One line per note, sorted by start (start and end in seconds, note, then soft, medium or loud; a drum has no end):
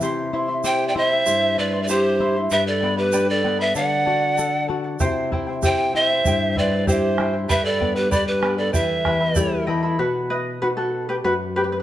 0.01 1.22 C3 medium
0.01 0.32 E4 medium
0.01 0.33 G4 medium
0.01 0.32 C5 medium
0.01 0.32 E5 medium
0.01 0.33 C6 medium
0.01 shaker medium
0.33 0.48 E4 medium
0.33 0.63 E4 medium
0.33 0.48 C5 medium
0.33 0.48 E5 medium
0.33 0.47 C6 medium
0.48 0.63 E4 soft
0.48 0.64 E5 soft
0.48 0.64 C6 medium
0.64 0.94 E4 medium
0.64 0.95 G4 medium
0.64 0.94 G4 medium
0.64 0.94 C5 medium
0.64 0.87 C5 medium
0.64 0.95 E5 medium
0.64 0.87 G5 loud
0.64 0.95 C6 loud
0.64 shaker medium
0.88 0.97 D5 medium
0.88 0.99 G5 medium
0.95 1.11 E4 medium
0.95 1.26 E4 medium
0.95 1.11 C5 medium
0.95 1.59 C5 medium
0.95 1.11 E5 medium
0.95 1.60 E5 loud
0.95 1.10 C6 medium
1.11 1.25 E4 soft
1.11 1.25 E5 soft
1.11 1.26 C6 soft
1.26 2.48 G2 medium
1.26 1.57 E4 medium
1.26 1.57 G4 medium
1.26 1.57 C5 medium
1.26 1.57 E5 medium
1.26 1.58 C6 medium
1.26 shaker loud
1.58 1.88 E4 soft
1.58 1.73 E4 medium
1.58 1.82 B4 medium
1.58 1.73 C5 medium
1.58 1.83 D5 medium
1.58 1.73 E5 medium
1.58 1.72 C6 medium
1.73 1.88 E4 soft
1.73 1.89 E5 soft
1.73 1.89 C6 soft
1.82 1.90 B4 medium
1.82 1.91 D5 medium
1.88 2.19 E4 medium
1.88 2.35 G4 medium
1.88 2.20 G4 medium
1.88 2.19 G4 medium
1.88 2.19 C5 medium
1.88 2.36 C5 medium
1.88 2.20 E5 medium
1.88 2.20 C6 medium
1.88 shaker loud
2.20 2.50 E4 medium
2.20 2.36 E4 medium
2.20 2.36 C5 medium
2.20 2.36 E5 medium
2.20 2.35 C6 medium
2.36 2.52 E4 soft
2.36 2.52 E5 soft
2.36 2.51 C6 medium
2.50 3.72 G2 medium
2.50 2.83 G4 medium
2.50 2.66 B4 medium
2.50 2.82 B4 medium
2.50 2.82 D5 medium
2.50 2.66 E5 loud
2.50 2.81 G5 medium
2.50 2.82 B5 medium
2.50 shaker loud
2.67 2.96 A4 medium
2.67 2.96 D5 medium
2.82 3.13 B3 soft
2.82 2.97 B4 medium
2.82 2.97 D5 medium
2.82 2.98 G5 medium
2.82 2.96 B5 medium
2.97 3.31 G4 medium
2.97 3.12 B4 soft
2.97 3.31 B4 medium
2.97 3.13 D5 soft
2.97 3.12 B5 soft
3.12 3.44 D4 medium
3.12 3.44 G4 medium
3.12 3.44 B4 medium
3.12 3.44 D5 medium
3.12 3.43 G5 medium
3.12 3.44 B5 medium
3.12 shaker loud
3.29 3.62 A4 medium
3.29 3.62 D5 medium
3.44 3.75 B3 medium
3.44 3.59 B4 medium
3.44 3.58 D5 medium
3.44 3.60 G5 medium
3.44 3.58 B5 medium
3.59 3.75 B4 soft
3.59 3.76 B4 medium
3.59 3.75 D5 soft
3.59 3.76 E5 medium
3.59 3.75 B5 medium
3.75 4.96 D3 medium
3.75 4.04 A4 medium
3.75 4.05 D5 medium
3.75 4.65 D5 medium
3.75 4.65 F#5 medium
3.75 4.06 F#5 medium
3.75 shaker loud
4.06 4.37 F#4 soft
4.06 4.22 A4 medium
4.06 4.22 D5 medium
4.06 4.20 F#5 medium
4.22 4.37 D5 soft
4.22 4.37 F#5 soft
4.38 4.67 A4 medium
4.38 4.69 A4 medium
4.38 4.68 D5 medium
4.38 4.68 F#5 medium
4.38 shaker loud
4.68 5.00 F#4 medium
4.68 4.84 A4 medium
4.68 4.84 D5 medium
4.68 4.83 F#5 medium
4.84 5.00 D5 soft
4.84 5.00 F#5 medium
5.00 6.21 C3 medium
5.00 5.31 E4 medium
5.00 5.31 G4 medium
5.00 5.32 C5 loud
5.00 5.31 E5 medium
5.00 5.32 G5 medium
5.00 bombo low medium
5.00 shaker medium
5.32 5.62 E4 soft
5.32 5.47 E4 medium
5.32 5.47 C5 medium
5.32 5.47 E5 medium
5.32 5.46 G5 medium
5.32 bombo low medium
5.47 5.63 E4 soft
5.47 5.63 C5 soft
5.47 5.62 G5 medium
5.63 5.94 E4 medium
5.63 5.93 G4 medium
5.63 5.94 G4 medium
5.63 5.94 C5 medium
5.63 5.93 C5 medium
5.63 5.93 E5 medium
5.63 5.94 G5 medium
5.63 5.93 G5 loud
5.63 bombo low medium
5.63 shaker loud
5.94 6.24 E4 medium
5.94 6.10 E4 medium
5.94 6.10 C5 medium
5.94 6.59 C5 medium
5.94 6.09 E5 medium
5.94 6.60 E5 loud
5.94 6.10 G5 medium
6.11 6.26 E4 soft
6.11 6.26 C5 soft
6.11 6.25 G5 medium
6.25 7.46 G2 medium
6.25 6.56 E4 medium
6.25 6.56 G4 medium
6.25 6.57 C5 medium
6.25 6.56 E5 medium
6.25 6.57 G5 loud
6.25 bombo low medium
6.25 shaker medium
6.56 6.86 E4 medium
6.56 6.72 E4 medium
6.56 6.89 B4 medium
6.56 6.72 C5 medium
6.56 6.90 D5 medium
6.56 6.72 E5 medium
6.56 6.71 G5 medium
6.56 bombo low medium
6.72 6.87 E4 soft
6.72 6.87 C5 soft
6.72 6.87 G5 medium
6.87 7.18 E4 medium
6.87 7.18 G4 medium
6.87 7.34 G4 medium
6.87 7.18 C5 medium
6.87 7.34 C5 medium
6.87 7.17 E5 medium
6.87 7.19 G5 medium
6.87 bombo low medium
6.87 shaker medium
7.18 7.33 E4 medium
7.18 7.49 E4 medium
7.18 7.33 C5 medium
7.18 7.34 E5 medium
7.18 7.32 G5 medium
7.18 bombo rim soft
7.33 7.49 E4 soft
7.33 7.49 C5 soft
7.33 7.48 G5 soft
7.48 8.71 G2 medium
7.48 7.80 G4 medium
7.48 7.79 B4 medium
7.48 7.66 B4 medium
7.48 7.80 D5 medium
7.48 7.67 E5 medium
7.48 7.79 G5 medium
7.48 7.80 B5 medium
7.48 bombo low medium
7.48 shaker medium
7.64 7.98 A4 medium
7.64 7.97 D5 medium
7.80 8.11 B3 medium
7.80 7.96 B4 medium
7.80 7.95 D5 medium
7.80 7.96 G5 medium
7.80 7.94 B5 medium
7.80 bombo low medium
7.96 8.11 G4 medium
7.96 8.11 B4 medium
7.96 8.10 B4 soft
7.96 8.11 D5 soft
7.96 8.11 B5 medium
8.11 8.42 D4 medium
8.11 8.26 G4 medium
8.11 8.43 G4 medium
8.11 8.41 B4 medium
8.11 8.42 D5 medium
8.11 8.26 D5 medium
8.11 8.40 G5 medium
8.11 8.42 B5 medium
8.11 bombo low medium
8.11 shaker loud
8.27 8.56 G4 medium
8.27 8.56 B4 medium
8.41 8.73 B3 medium
8.41 8.58 B4 medium
8.41 8.58 D5 medium
8.41 8.58 G5 medium
8.41 8.57 B5 medium
8.41 bombo rim medium
8.58 8.73 A4 medium
8.58 8.73 B4 soft
8.58 8.73 D5 medium
8.58 8.73 D5 soft
8.58 8.73 B5 medium
8.73 9.95 E2 medium
8.73 9.05 E4 medium
8.73 9.04 G4 medium
8.73 9.63 B4 medium
8.73 9.05 E5 medium
8.73 9.63 E5 medium
8.73 9.04 G5 medium
8.73 9.05 B5 loud
8.73 bombo low medium
8.73 shaker medium
9.05 9.36 E3 soft
9.05 9.21 E4 medium
9.05 9.35 G4 medium
9.05 9.34 B4 medium
9.05 9.20 E5 medium
9.05 9.21 G5 medium
9.05 9.19 B5 medium
9.05 bombo rim soft
9.05 bombo low medium
9.20 9.35 E4 soft
9.20 9.35 E5 soft
9.20 9.36 B5 soft
9.36 9.67 G3 medium
9.36 9.66 E4 medium
9.36 9.66 G4 medium
9.36 9.68 D5 medium
9.36 9.66 E5 medium
9.36 9.65 G5 medium
9.36 9.67 B5 medium
9.36 bombo low medium
9.36 shaker loud
9.66 9.98 E3 medium
9.66 9.83 E4 medium
9.66 9.97 A4 medium
9.66 9.99 D#5 medium
9.66 9.82 E5 medium
9.66 9.83 G5 medium
9.66 9.81 B5 medium
9.83 9.99 E4 soft
9.83 9.99 E5 soft
9.83 9.98 B5 medium
9.99 11.20 B2 medium
9.99 10.28 F#4 medium
9.99 10.29 B4 medium
10.30 10.59 B4 medium
10.30 10.59 D#5 medium
10.62 11.23 B3 soft
10.62 11.23 D#4 soft
10.62 10.68 F#4 medium
10.62 11.23 F#4 soft
10.62 10.67 B4 medium
10.77 11.06 F#4 soft
10.77 11.08 A4 medium
11.09 11.15 G4 medium
11.09 11.14 B4 medium
11.24 11.83 F#2 medium
11.24 11.33 F#4 medium
11.24 11.33 B4 medium
11.56 11.63 G4 medium
11.56 11.63 B4 medium
11.64 11.71 B4 medium
11.72 11.79 B4 medium